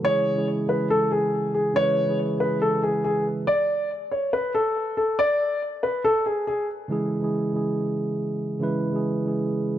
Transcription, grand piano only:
0.05 0.45 C#5 loud
0.69 0.88 B4 medium
0.90 1.09 A4 medium
1.12 1.52 G#4 medium
1.54 1.73 G#4 medium
1.76 2.16 C#5 loud
2.40 2.59 B4 medium
2.62 2.80 A4 medium
2.83 3.02 G#4 medium
3.04 3.23 G#4 medium
3.47 3.88 D5 loud
4.11 4.30 C#5 medium
4.33 4.52 B4 medium
4.55 4.95 A4 medium
4.97 5.16 A4 medium
5.19 5.59 D5 loud
5.83 6.02 B4 medium
6.04 6.23 A4 medium
6.26 6.45 G#4 medium
6.47 6.66 G#4 medium

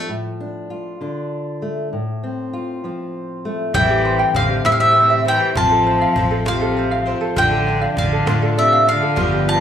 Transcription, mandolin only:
3.75 4.36 G5 loud
4.36 4.64 F5 medium
4.66 4.72 E5 loud
4.72 4.79 F5 medium
4.80 5.23 E5 loud
5.28 5.57 G5 loud
5.57 6.48 A5 loud
6.48 7.11 F5 loud
7.38 7.98 G5 loud
7.98 8.58 F5 loud
8.59 8.88 E5 medium
8.89 9.48 F5 medium
9.49 9.60 A5 loud

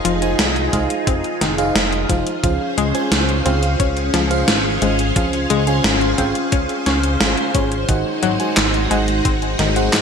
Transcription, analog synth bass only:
0.05 0.35 F1 loud
0.39 0.69 C2 medium
0.73 0.88 C2 medium
1.07 1.22 F1 medium
1.41 1.72 F1 loud
1.75 2.06 F1 medium
2.09 2.25 F1 medium
2.44 2.59 C#2 loud
2.78 2.93 C#2 loud
3.12 3.42 C#2 loud
3.46 3.76 C#2 loud
3.80 4.10 C#2 loud
4.14 4.44 C#2 loud
4.48 4.78 G#1 medium
4.82 5.12 G#1 loud
5.16 5.47 C#2 loud
5.50 5.81 C#2 loud
5.84 6.15 G#1 medium
6.18 6.34 G#1 medium
6.53 6.68 C#2 loud
6.86 7.17 C#2 loud
7.21 7.36 G#1 medium
7.55 7.85 G#1 medium
7.89 8.04 G#1 loud
8.23 8.38 G#1 loud
8.57 8.87 G#1 loud
8.91 9.21 G#1 loud
9.25 9.56 G#1 loud
9.59 9.90 G#1 loud
9.93 10.02 G#2 medium

